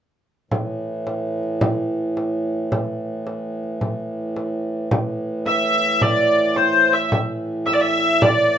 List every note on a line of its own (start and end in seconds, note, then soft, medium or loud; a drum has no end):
0.51 4.89 A2 soft
0.51 4.90 E3 medium
0.51 frame drum medium
1.07 frame drum medium
1.43 frame drum soft
1.61 frame drum medium
2.17 frame drum medium
2.53 frame drum soft
2.72 frame drum medium
3.27 frame drum soft
3.63 frame drum soft
3.81 frame drum medium
4.00 frame drum soft
4.36 frame drum medium
4.91 8.58 A2 medium
4.91 8.58 E3 medium
4.91 frame drum medium
5.46 6.02 E5 loud
5.46 frame drum medium
6.01 6.56 D5 medium
6.01 frame drum medium
6.56 6.93 C5 medium
6.56 frame drum medium
6.93 7.12 E5 medium
7.12 frame drum medium
7.66 7.73 E5 medium
7.66 frame drum medium
7.73 7.81 D5 medium
7.80 8.22 E5 medium
8.22 8.58 D5 medium
8.22 frame drum medium